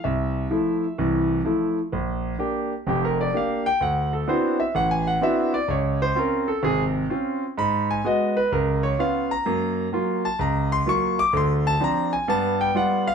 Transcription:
0.04 C2 E5
0.51 F3 A3 E4
0.98 C2 E3
1.45 F3 A3 E4
1.92 A#1
2.39 A#3 D4 G4
2.87 F1 F2 G4
3.05 A#4
3.21 D5
3.33 A#3 D4 G4 F5
3.66 G5
3.81 D2 F#5
4.13 A4
4.28 B3 C4 D4 E4 F#4 C5
4.60 E5
4.75 A1 F#5
4.91 G#5
5.07 F#5
5.22 B3 C4 D4 E4 F#4 E5
5.54 D5
5.68 C#2 C#5
6.02 C5
6.15 C4 C#4 F4 A#4
6.48 A4
6.63 G#1 C3 G#4
7.10 C4 C#4 F4
7.58 G#2 B5
7.91 G#5
8.05 G#3 B3 F#4 D#5
8.37 B4
8.52 C#2 A#4
8.83 C#5
8.99 B3 C#4 F4 F5
9.31 A#5
9.46 F#2 A#3
9.93 F#3 A#3 F4
10.25 A5
10.39 C#2 A#5
10.72 C6
10.86 F#3 A#3 F4 C#6
11.19 D6
11.33 D2 D3
11.37 C6
11.67 A5
11.80 F3 C4 D4 A#5
12.13 G#5
12.28 G2 B3 A5
12.61 G5
12.75 G3 B3 F4 F#5
13.07 F5

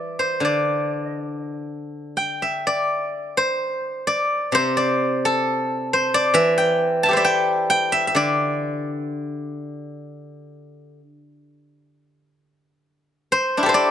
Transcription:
Already playing: E3 C5 D5 E5
0.19 C5
0.40 D3
0.45 D5
1.05 D#5
1.21 D5
1.39 D#5
1.55 D5
2.17 G5
2.42 E5
2.67 D5
3.37 C5
4.07 D5
4.52 C3 C5
4.77 D5
5.25 A4
5.93 C5
6.14 D5
6.34 E3 E5
6.58 G5
7.03 E4 A5
7.09 G4 A4
7.13 C5 D5 E5
7.25 G5
7.70 G5
7.92 E5
8.07 E5
8.15 D3 D5
13.32 C5
13.57 D4 E4
13.63 G4 A4
13.69 C5
13.74 D5

